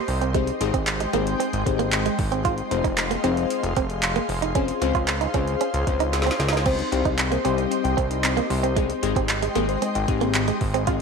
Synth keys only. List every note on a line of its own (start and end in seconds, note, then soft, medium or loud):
0.34 0.48 C4 medium
0.34 0.48 D#4 medium
0.34 0.48 G4 medium
0.34 0.48 G#4 medium
0.34 0.48 C5 loud
0.61 0.87 C4 medium
0.61 0.87 D#4 medium
0.61 0.87 G4 medium
0.61 0.87 G#4 medium
0.61 0.87 D#5 loud
1.13 1.40 C4 medium
1.13 1.40 D#4 medium
1.13 1.40 G4 medium
1.13 1.40 G#4 medium
1.13 1.40 C5 loud
1.66 2.05 C4 medium
1.66 2.06 D#4 medium
1.66 2.06 G4 medium
1.66 2.06 G#4 medium
1.66 2.06 C5 loud
2.44 2.58 C4 medium
2.44 2.58 D#4 medium
2.44 2.58 F4 medium
2.44 2.58 G#4 medium
2.44 2.58 C5 loud
2.71 2.97 C4 medium
2.71 2.97 D#4 medium
2.71 2.97 F4 medium
2.71 2.98 G#4 medium
2.71 2.98 C5 loud
3.24 3.76 C4 medium
3.24 3.76 D#4 medium
3.24 3.77 F4 medium
3.24 3.77 G#4 medium
3.24 3.77 C5 loud
4.55 4.68 C4 medium
4.55 4.69 C#4 medium
4.55 4.68 F4 medium
4.55 4.69 G#4 medium
4.55 4.69 C5 loud
4.81 5.08 C4 medium
4.81 5.08 C#4 medium
4.81 5.08 F4 medium
4.81 5.08 G#4 medium
4.81 5.08 C5 loud
5.34 5.61 C4 medium
5.34 5.61 C#4 medium
5.34 5.61 F4 medium
5.34 5.61 G#4 medium
5.34 5.61 C5 medium
5.87 6.26 C4 medium
5.87 6.26 C#4 medium
5.87 6.27 F4 medium
5.87 6.27 G#4 medium
5.87 6.27 C5 medium
6.66 6.79 G3 medium
6.66 6.79 C4 medium
6.66 6.79 D#4 medium
6.66 6.79 G4 medium
6.66 6.79 C5 loud
6.92 7.18 G3 medium
6.92 7.19 C4 medium
6.92 7.19 D#4 medium
6.92 7.19 G4 medium
6.92 7.19 C5 loud
7.45 7.98 G3 medium
7.45 7.98 C4 medium
7.45 7.98 D#4 medium
7.45 7.98 G4 medium
7.45 7.98 C5 loud
8.76 8.90 G#3 medium
8.76 8.90 C4 medium
8.76 8.90 D#4 medium
8.76 8.90 G4 medium
8.76 8.90 G#4 loud
9.03 9.29 G#3 medium
9.03 9.29 C4 medium
9.03 9.29 D#4 medium
9.03 9.29 G4 medium
9.03 9.29 G#4 loud
9.55 9.82 G#3 medium
9.55 9.82 C4 medium
9.55 9.82 D#4 medium
9.55 9.82 G4 medium
9.55 9.82 G#4 loud
10.08 10.47 G#3 medium
10.08 10.47 C4 medium
10.08 10.48 D#4 medium
10.08 10.48 G4 medium
10.08 10.48 G#4 loud
10.87 11.00 G#3 medium
10.87 11.00 C4 medium
10.87 11.00 D#4 medium
10.87 11.00 F4 medium
10.87 11.00 G#4 loud